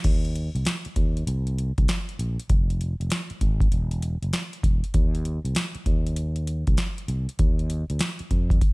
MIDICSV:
0, 0, Header, 1, 4, 480
1, 0, Start_track
1, 0, Tempo, 612245
1, 32, Time_signature, 4, 2, 24, 8
1, 6846, End_track
2, 0, Start_track
2, 0, Title_t, "Fretless electric bass"
2, 0, Program_c, 0, 35
2, 36, Note_on_c, 0, 39, 87
2, 376, Note_off_c, 0, 39, 0
2, 431, Note_on_c, 0, 36, 83
2, 501, Note_off_c, 0, 36, 0
2, 755, Note_on_c, 0, 39, 85
2, 960, Note_off_c, 0, 39, 0
2, 996, Note_on_c, 0, 36, 106
2, 1336, Note_off_c, 0, 36, 0
2, 1396, Note_on_c, 0, 36, 89
2, 1464, Note_off_c, 0, 36, 0
2, 1718, Note_on_c, 0, 34, 89
2, 1851, Note_off_c, 0, 34, 0
2, 1959, Note_on_c, 0, 29, 97
2, 2298, Note_off_c, 0, 29, 0
2, 2354, Note_on_c, 0, 29, 83
2, 2423, Note_off_c, 0, 29, 0
2, 2676, Note_on_c, 0, 32, 102
2, 2881, Note_off_c, 0, 32, 0
2, 2914, Note_on_c, 0, 28, 105
2, 3255, Note_off_c, 0, 28, 0
2, 3312, Note_on_c, 0, 30, 92
2, 3382, Note_off_c, 0, 30, 0
2, 3636, Note_on_c, 0, 28, 86
2, 3770, Note_off_c, 0, 28, 0
2, 3877, Note_on_c, 0, 39, 106
2, 4217, Note_off_c, 0, 39, 0
2, 4270, Note_on_c, 0, 36, 91
2, 4341, Note_off_c, 0, 36, 0
2, 4595, Note_on_c, 0, 39, 95
2, 5200, Note_off_c, 0, 39, 0
2, 5234, Note_on_c, 0, 36, 84
2, 5303, Note_off_c, 0, 36, 0
2, 5553, Note_on_c, 0, 36, 89
2, 5688, Note_off_c, 0, 36, 0
2, 5797, Note_on_c, 0, 39, 102
2, 6137, Note_off_c, 0, 39, 0
2, 6194, Note_on_c, 0, 38, 89
2, 6263, Note_off_c, 0, 38, 0
2, 6514, Note_on_c, 0, 41, 87
2, 6720, Note_off_c, 0, 41, 0
2, 6846, End_track
3, 0, Start_track
3, 0, Title_t, "Muted fretless electric bass strokes"
3, 675, Note_on_c, 9, 29, 47
3, 753, Note_off_c, 9, 29, 0
3, 2593, Note_on_c, 9, 29, 43
3, 2671, Note_off_c, 9, 29, 0
3, 4511, Note_on_c, 9, 29, 43
3, 4589, Note_off_c, 9, 29, 0
3, 6432, Note_on_c, 9, 29, 45
3, 6511, Note_off_c, 9, 29, 0
3, 6846, End_track
4, 0, Start_track
4, 0, Title_t, "Drums"
4, 32, Note_on_c, 9, 42, 78
4, 32, Note_on_c, 9, 49, 93
4, 36, Note_on_c, 9, 36, 107
4, 111, Note_off_c, 9, 42, 0
4, 111, Note_off_c, 9, 49, 0
4, 114, Note_off_c, 9, 36, 0
4, 195, Note_on_c, 9, 42, 44
4, 273, Note_off_c, 9, 42, 0
4, 278, Note_on_c, 9, 42, 69
4, 357, Note_off_c, 9, 42, 0
4, 435, Note_on_c, 9, 42, 46
4, 511, Note_off_c, 9, 42, 0
4, 511, Note_on_c, 9, 42, 87
4, 521, Note_on_c, 9, 38, 96
4, 590, Note_off_c, 9, 42, 0
4, 600, Note_off_c, 9, 38, 0
4, 665, Note_on_c, 9, 42, 46
4, 744, Note_off_c, 9, 42, 0
4, 753, Note_on_c, 9, 42, 70
4, 755, Note_on_c, 9, 36, 78
4, 831, Note_off_c, 9, 42, 0
4, 834, Note_off_c, 9, 36, 0
4, 916, Note_on_c, 9, 42, 50
4, 995, Note_off_c, 9, 42, 0
4, 998, Note_on_c, 9, 42, 96
4, 1077, Note_off_c, 9, 42, 0
4, 1151, Note_on_c, 9, 42, 48
4, 1229, Note_off_c, 9, 42, 0
4, 1242, Note_on_c, 9, 42, 65
4, 1321, Note_off_c, 9, 42, 0
4, 1394, Note_on_c, 9, 42, 46
4, 1396, Note_on_c, 9, 36, 89
4, 1473, Note_off_c, 9, 42, 0
4, 1475, Note_off_c, 9, 36, 0
4, 1476, Note_on_c, 9, 42, 77
4, 1481, Note_on_c, 9, 38, 105
4, 1555, Note_off_c, 9, 42, 0
4, 1559, Note_off_c, 9, 38, 0
4, 1637, Note_on_c, 9, 42, 52
4, 1715, Note_off_c, 9, 42, 0
4, 1720, Note_on_c, 9, 42, 83
4, 1798, Note_off_c, 9, 42, 0
4, 1878, Note_on_c, 9, 42, 62
4, 1956, Note_off_c, 9, 42, 0
4, 1956, Note_on_c, 9, 42, 85
4, 1958, Note_on_c, 9, 36, 108
4, 2034, Note_off_c, 9, 42, 0
4, 2037, Note_off_c, 9, 36, 0
4, 2118, Note_on_c, 9, 42, 45
4, 2197, Note_off_c, 9, 42, 0
4, 2202, Note_on_c, 9, 42, 66
4, 2280, Note_off_c, 9, 42, 0
4, 2359, Note_on_c, 9, 42, 46
4, 2433, Note_off_c, 9, 42, 0
4, 2433, Note_on_c, 9, 42, 88
4, 2443, Note_on_c, 9, 38, 95
4, 2511, Note_off_c, 9, 42, 0
4, 2522, Note_off_c, 9, 38, 0
4, 2587, Note_on_c, 9, 42, 46
4, 2665, Note_off_c, 9, 42, 0
4, 2674, Note_on_c, 9, 42, 73
4, 2676, Note_on_c, 9, 36, 80
4, 2753, Note_off_c, 9, 42, 0
4, 2754, Note_off_c, 9, 36, 0
4, 2826, Note_on_c, 9, 36, 97
4, 2834, Note_on_c, 9, 42, 56
4, 2905, Note_off_c, 9, 36, 0
4, 2912, Note_off_c, 9, 42, 0
4, 2915, Note_on_c, 9, 42, 91
4, 2993, Note_off_c, 9, 42, 0
4, 3068, Note_on_c, 9, 42, 51
4, 3146, Note_off_c, 9, 42, 0
4, 3155, Note_on_c, 9, 42, 65
4, 3234, Note_off_c, 9, 42, 0
4, 3313, Note_on_c, 9, 42, 45
4, 3391, Note_off_c, 9, 42, 0
4, 3394, Note_on_c, 9, 42, 84
4, 3398, Note_on_c, 9, 38, 97
4, 3472, Note_off_c, 9, 42, 0
4, 3477, Note_off_c, 9, 38, 0
4, 3553, Note_on_c, 9, 42, 53
4, 3631, Note_off_c, 9, 42, 0
4, 3634, Note_on_c, 9, 36, 86
4, 3637, Note_on_c, 9, 42, 79
4, 3712, Note_off_c, 9, 36, 0
4, 3716, Note_off_c, 9, 42, 0
4, 3793, Note_on_c, 9, 42, 60
4, 3871, Note_off_c, 9, 42, 0
4, 3873, Note_on_c, 9, 42, 80
4, 3876, Note_on_c, 9, 36, 105
4, 3951, Note_off_c, 9, 42, 0
4, 3954, Note_off_c, 9, 36, 0
4, 4035, Note_on_c, 9, 42, 46
4, 4114, Note_off_c, 9, 42, 0
4, 4117, Note_on_c, 9, 42, 69
4, 4196, Note_off_c, 9, 42, 0
4, 4274, Note_on_c, 9, 42, 49
4, 4351, Note_off_c, 9, 42, 0
4, 4351, Note_on_c, 9, 42, 84
4, 4361, Note_on_c, 9, 38, 106
4, 4429, Note_off_c, 9, 42, 0
4, 4439, Note_off_c, 9, 38, 0
4, 4505, Note_on_c, 9, 42, 44
4, 4583, Note_off_c, 9, 42, 0
4, 4594, Note_on_c, 9, 42, 68
4, 4595, Note_on_c, 9, 36, 82
4, 4673, Note_off_c, 9, 42, 0
4, 4674, Note_off_c, 9, 36, 0
4, 4756, Note_on_c, 9, 42, 50
4, 4833, Note_off_c, 9, 42, 0
4, 4833, Note_on_c, 9, 42, 83
4, 4911, Note_off_c, 9, 42, 0
4, 4985, Note_on_c, 9, 42, 50
4, 5063, Note_off_c, 9, 42, 0
4, 5075, Note_on_c, 9, 42, 66
4, 5154, Note_off_c, 9, 42, 0
4, 5230, Note_on_c, 9, 42, 47
4, 5234, Note_on_c, 9, 36, 94
4, 5309, Note_off_c, 9, 42, 0
4, 5310, Note_on_c, 9, 42, 76
4, 5312, Note_off_c, 9, 36, 0
4, 5315, Note_on_c, 9, 38, 98
4, 5389, Note_off_c, 9, 42, 0
4, 5393, Note_off_c, 9, 38, 0
4, 5472, Note_on_c, 9, 42, 57
4, 5551, Note_off_c, 9, 42, 0
4, 5554, Note_on_c, 9, 42, 84
4, 5632, Note_off_c, 9, 42, 0
4, 5714, Note_on_c, 9, 42, 57
4, 5792, Note_off_c, 9, 42, 0
4, 5793, Note_on_c, 9, 42, 78
4, 5796, Note_on_c, 9, 36, 109
4, 5871, Note_off_c, 9, 42, 0
4, 5875, Note_off_c, 9, 36, 0
4, 5952, Note_on_c, 9, 42, 43
4, 6031, Note_off_c, 9, 42, 0
4, 6035, Note_on_c, 9, 42, 75
4, 6113, Note_off_c, 9, 42, 0
4, 6192, Note_on_c, 9, 42, 49
4, 6267, Note_off_c, 9, 42, 0
4, 6267, Note_on_c, 9, 42, 86
4, 6277, Note_on_c, 9, 38, 104
4, 6345, Note_off_c, 9, 42, 0
4, 6355, Note_off_c, 9, 38, 0
4, 6422, Note_on_c, 9, 42, 50
4, 6500, Note_off_c, 9, 42, 0
4, 6513, Note_on_c, 9, 42, 70
4, 6514, Note_on_c, 9, 36, 79
4, 6591, Note_off_c, 9, 42, 0
4, 6592, Note_off_c, 9, 36, 0
4, 6666, Note_on_c, 9, 36, 98
4, 6674, Note_on_c, 9, 42, 53
4, 6744, Note_off_c, 9, 36, 0
4, 6752, Note_off_c, 9, 42, 0
4, 6754, Note_on_c, 9, 36, 102
4, 6754, Note_on_c, 9, 42, 92
4, 6832, Note_off_c, 9, 36, 0
4, 6832, Note_off_c, 9, 42, 0
4, 6846, End_track
0, 0, End_of_file